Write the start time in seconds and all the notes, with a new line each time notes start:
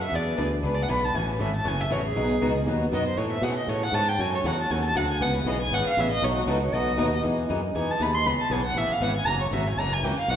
Already playing: F#2
0.04 E5
0.12 E2 E3 B3 D4 G#4 B4 D5
0.37 D2 E3 B3 D4 G#4 B4
0.63 C#2 E3 B3 D4 G#4 B4
0.74 D5
0.83 F#5
0.89 B1 E3 B3 D4 G#4 B4 B5
1.04 A5
1.14 A1 C#3 E3 F#3 A3 C#4 E4 F#4 G#5
1.32 B4
1.39 G#1 C#3 E3 F#3 A3 C#4 E4 F#4 E5
1.56 A5
1.64 F#1 C#3 E3 F#3 A3 C#4 E4 F#4 G#5
1.81 E5
1.90 A1 C#3 E3 F#3 A3 C#4 E4 F#4 C#5
2.06 G#4
2.16 B1 B2 D#3 F#3 B3 D#4 F#4 B4
2.42 C#2 B2 D#3 F#3 B3 D#4 F#4 B4
2.66 D#2 B2 D#3 F#3 B3 D#4 F#4 B4
2.92 F#2 B2 D#3 F#3 B3 D#4 F#4 B4 D#5
3.08 C5
3.17 A2 C#3 E3 G#3 A3 C#4 E4 G#4 A4 C#5
3.32 E5
3.42 B2 C#3 E3 G#3 A3 C#4 E4 G#4 A4 F#5
3.57 D#5
3.68 A2 C#3 E3 G#3 A3 C#4 E4 G#4 A4 C#5
3.83 F#5
3.92 G#2 C#3 E3 G#3 A3 C#4 E4 G#4 A4 A5
4.08 G5
4.18 F#2 C#3 F#3 A3 C#4 F#4 A4 G#5
4.35 C#5
4.44 E2 C#3 F#3 A3 C#4 F#4 A4 F#5
4.61 A5
4.70 D#2 C#3 F#3 A3 C#4 F#4 A4 G#5
4.85 A5
4.95 D2 C#3 F#3 A3 C#4 F#4 A4 F#5
5.10 G#5
5.20 C#2 C#3 E3 G#3 B3 C#4 E4 G#4 F#5
5.37 B4
5.45 B1 C#3 E3 G#3 B3 C#4 E4 G#4 D#5
5.61 G#5
5.71 G#1 C#3 E3 G#3 B3 C#4 E4 G#4 F#5
5.86 F5, muted fretless electric bass stroke
5.97 A1 C#3 E3 G#3 B3 C#4 E4 G#4 E5
6.12 D#5
6.22 B1 B2 F#3 A3 D#4 F#4 B4 C#5
6.38 F#4
6.47 C#2 B2 F#3 A3 D#4 F#4 A4 B4
6.62 C#5
6.72 B1 B2 F#3 A3 D#4 F#4 B4 D#5
6.98 D#2 B2 F#3 A3 D#4 F#4 B4
7.23 E2 E3 G#3 B3 D#4 G#4
7.49 F#2 E3 G#3 B3 D#4 G#4
7.75 E2 E3 G#3 B3 D#4 G#4 G#5
7.91 A5
8.00 D#2 E3 G#3 B3 D#4 G#4 B5
8.14 C6
8.25 C#2 C#3 E3 G#3 B3 C#4 E4 G#4 B5
8.38 A5, muted fretless electric bass stroke
8.50 B1 C#3 E3 G#3 B3 C#4 E4 G#4 G#5
8.65 F#5
8.75 A1 C#3 E3 G#3 B3 C#4 E4 G#4 E5
8.89 F5, muted fretless electric bass stroke
9.00 G#1 C#3 E3 G#3 B3 C#4 E4 G#4 F#5
9.16 G#5
9.25 F#1 C#3 E3 F#3 A#3 C#4 E4 F#4 A#4 A#5
9.41 C#5
9.51 G#1 C#3 E3 F#3 A#3 C#4 E4 F#4 A#4 E5
9.67 G#5
9.77 F#1 C#3 E3 F#3 A#3 C#4 E4 F#4 A#4 A#5
9.93 G#5
10.03 C#2 C#3 E3 F#3 A#3 C#4 E4 F#4 A#4 G5
10.17 F5, muted fretless electric bass stroke
10.28 B1 B2 F#3 A3 D#4 F#4 B4 F#5